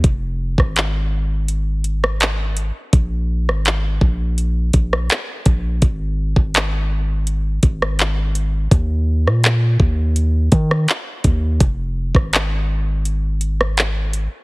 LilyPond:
<<
  \new Staff \with { instrumentName = "808-style bass" } { \clef bass \time 4/4 \key f \dorian \tempo 4 = 83 f,,8. aes,,2. r16 | bes,,8. aes,,8. bes,,4 bes,,8 r8 bes,,8 | aes,,8. aes,,4.~ aes,,16 aes,,4. | ees,8. bes,8. ees,4 ees8 r8 ees,8 |
f,,8. aes,,2. r16 | }
  \new DrumStaff \with { instrumentName = "Drums" } \drummode { \time 4/4 <hh bd>8. <bd ss>16 <hc hh>4 hh8 hh16 ss16 <hc hh>8 hh8 | <hh bd>8. ss16 <hc hh>8 bd8 hh8 <hh bd>16 ss16 <hc hh>8 <hh bd>8 | <hh bd>8. bd16 <hc hh>4 hh8 <hh bd>16 ss16 <hc hh>8 hh8 | <hh bd>8. ss16 <hc hh>8 bd8 hh8 <hh bd>16 ss16 <hc hh>8 <hh bd>8 |
<hh bd>8. <bd ss>16 <hc hh>4 hh8 hh16 ss16 <hc hh>8 hh8 | }
>>